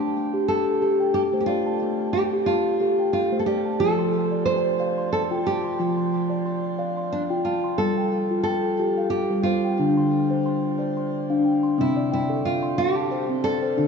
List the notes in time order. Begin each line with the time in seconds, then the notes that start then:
Already playing: A3 G4
0.00 A5
0.34 G4
0.48 A4 A5
0.82 G4 A4
1.00 G5
1.14 G4
1.33 A3 C5
1.40 G4
1.46 F4 D5
1.67 A5
1.82 A3
2.00 A5
2.13 G4
2.33 G4
2.46 F4 A5
2.81 G4 A4
2.99 G5
3.13 F4
3.32 A3 C5
3.39 A4
3.46 G4 D5
3.66 A5
3.80 F3 F4 A4
3.99 C6
4.31 D5
4.46 C5 C6
4.80 D5 F5
4.98 C6
5.13 A4
5.31 F4 G5
5.46 G4 A5
5.64 C6
5.79 F3 F4
5.97 C6
6.30 D5
6.46 C6
6.79 D5 F5
6.97 C6
7.12 D4
7.30 F4 G5
7.45 F4 A5
7.64 C6
7.78 G3 A4
7.98 G5
8.31 F4
8.43 A4 G5
8.79 F4 G4
8.98 F5
9.10 G4
9.30 G3 A4
9.43 F4 C5
9.65 G5
9.79 D3 D4
9.97 C6
10.31 C5
10.46 C6
10.79 C5 D5
10.97 C6
11.30 D4 F5
11.45 G5
11.63 C6
11.78 C3 C4 E4
11.96 D5
12.12 E4 G5
12.30 A4
12.45 F4
12.63 C6
12.78 G4 F5
12.96 A5
13.11 C5
13.29 C4
13.44 A4 D5
13.62 C5
13.77 D3 D4